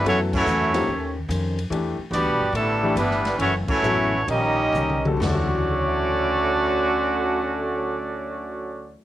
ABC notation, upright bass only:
X:1
M:4/4
L:1/8
Q:"Swing" 1/4=132
K:D
V:1 name="Upright bass" clef=bass
F,,2 E,,2 _E,,2 =F,,2 | E,, z (3D,, B,,, G,,, A,,,2 G,,,2 | F,,, z A,,,2 _B,,,2 =C,,2 | D,,8- |
D,,8 |]